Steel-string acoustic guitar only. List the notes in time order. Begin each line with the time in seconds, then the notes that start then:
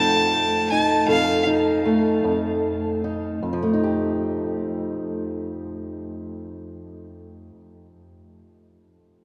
Already playing: F2 A3 D#4 A4
0.72 D#4
1.08 F2 A4
1.47 D#4
1.85 A3
2.24 F2
3.04 D#4
3.43 F2
3.53 F3
3.63 A3
3.73 D#4
3.83 G4